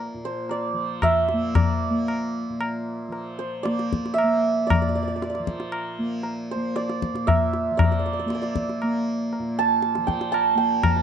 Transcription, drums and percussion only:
0.49 tabla tin
1.02 tabla na, tabla ge
1.29 tabla te
1.55 tabla na, tabla ge
2.08 tabla na
2.61 tabla na
3.12 tabla tin
3.65 tabla te
3.79 tabla te
3.93 tabla ke
4.06 tabla te
4.18 tabla na
4.70 tabla na, tabla ge
5.22 tabla te
5.35 tabla te
5.47 tabla ke
5.60 tabla te
5.72 tabla na
6.23 tabla tin
6.76 tabla te
6.89 tabla te
7.02 tabla ke
7.15 tabla te
7.28 tabla na, tabla ge
7.53 tabla te
7.79 tabla na, tabla ge
8.30 tabla te
8.43 tabla te
8.55 tabla ke
8.69 tabla te
8.82 tabla na
9.33 tabla tin
9.82 tabla te
9.95 tabla te
10.08 tabla ke
10.21 tabla te
10.34 tabla na
10.83 tabla na, tabla ge

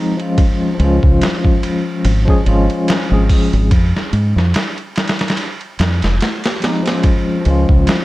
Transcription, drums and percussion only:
0.20 ride
0.38 kick, ride
0.80 ride
1.03 kick
1.21 snare, ride
1.45 kick
1.63 ride
2.05 ride
2.28 kick
2.46 ride
2.70 ride
2.88 snare, ride
3.29 kick, open hi-hat
3.53 ride
3.71 kick, ride
3.96 snare
4.13 ride
4.38 snare
4.54 snare, ride
4.78 ride
4.96 snare, ride
5.08 snare, ride
5.19 snare, ride
5.28 snare, ride
5.37 ride
5.61 ride
5.79 snare, ride
6.02 snare, ride
6.21 snare, ride
6.44 snare, ride
6.62 snare, ride
6.86 snare, ride
7.03 kick, ride
7.45 ride
7.69 kick
7.87 snare, ride

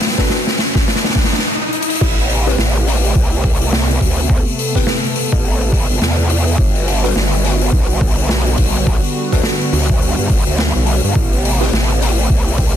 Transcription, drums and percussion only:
0.00 snare, open hi-hat
0.07 snare
0.11 snare
0.18 kick, snare, open hi-hat
0.20 snare
0.26 snare, open hi-hat
0.30 snare
0.47 snare, open hi-hat
0.58 snare, open hi-hat
0.75 kick, snare, open hi-hat
0.88 snare, open hi-hat
0.96 snare
1.04 snare, open hi-hat
1.07 snare, open hi-hat
1.10 open hi-hat
1.12 open hi-hat
1.15 kick, snare, open hi-hat
1.24 snare
1.32 snare, open hi-hat
1.39 snare
1.73 closed hi-hat
1.82 closed hi-hat
1.90 closed hi-hat
1.95 closed hi-hat
2.01 kick, crash
2.19 open hi-hat
2.29 open hi-hat
2.47 snare, open hi-hat
2.58 snare, open hi-hat
2.75 open hi-hat
2.87 snare, open hi-hat
3.04 open hi-hat
3.15 kick, open hi-hat
3.32 open hi-hat
3.44 kick, open hi-hat
3.61 open hi-hat
3.73 snare, open hi-hat
3.91 open hi-hat
4.01 kick, open hi-hat
4.19 open hi-hat
4.30 kick
4.48 open hi-hat
4.59 open hi-hat
4.75 kick, snare, open hi-hat
4.87 snare, open hi-hat
5.04 open hi-hat
5.16 open hi-hat
5.32 kick, open hi-hat
5.45 open hi-hat
5.61 open hi-hat
5.72 kick, open hi-hat
5.90 open hi-hat
6.02 snare, open hi-hat
6.19 open hi-hat
6.30 open hi-hat
6.47 open hi-hat
6.58 kick
6.75 open hi-hat
6.88 open hi-hat
7.04 snare, open hi-hat
7.16 snare, open hi-hat
7.32 open hi-hat
7.44 snare, open hi-hat
7.61 open hi-hat
7.72 kick, open hi-hat
7.90 open hi-hat
8.01 kick, open hi-hat
8.07 open hi-hat
8.11 open hi-hat
8.18 open hi-hat
8.29 snare
8.46 open hi-hat
8.57 kick, open hi-hat
8.75 open hi-hat
8.87 kick, open hi-hat
9.04 open hi-hat
9.32 kick, snare, open hi-hat
9.43 snare, open hi-hat
9.61 open hi-hat
9.73 open hi-hat
9.79 open hi-hat
9.83 open hi-hat
9.89 kick, open hi-hat
9.93 open hi-hat
9.99 open hi-hat
10.01 open hi-hat
10.18 open hi-hat
10.30 kick, open hi-hat
10.47 open hi-hat
10.58 snare, open hi-hat
10.75 open hi-hat
10.86 open hi-hat
11.05 open hi-hat
11.15 kick, open hi-hat
11.33 open hi-hat
11.45 open hi-hat
11.61 snare, open hi-hat
11.73 snare, open hi-hat
11.89 open hi-hat
12.01 snare, open hi-hat
12.19 open hi-hat
12.30 kick
12.48 open hi-hat
12.58 kick, open hi-hat

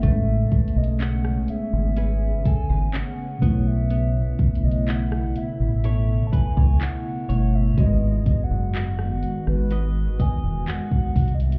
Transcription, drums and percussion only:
0.03 kick, closed hi-hat
0.51 kick, closed hi-hat
0.68 closed hi-hat
0.84 closed hi-hat
1.00 clap, closed hi-hat
1.25 cross-stick
1.48 closed hi-hat
1.96 closed hi-hat
2.45 kick, closed hi-hat
2.94 clap, closed hi-hat
3.42 kick, closed hi-hat
3.90 closed hi-hat
4.39 kick, closed hi-hat
4.55 closed hi-hat
4.71 closed hi-hat
4.88 clap, closed hi-hat
5.12 cross-stick
5.36 closed hi-hat
5.84 closed hi-hat
6.33 kick, closed hi-hat
6.57 kick
6.81 clap, closed hi-hat
7.30 closed hi-hat
7.78 kick, closed hi-hat
8.26 kick, closed hi-hat
8.75 clap, closed hi-hat
8.99 cross-stick
9.23 closed hi-hat
9.47 cross-stick
9.71 closed hi-hat
10.20 kick, closed hi-hat
10.68 clap, closed hi-hat
10.91 kick
11.16 kick, closed hi-hat, open hi-hat
11.28 closed hi-hat
11.40 closed hi-hat
11.52 closed hi-hat

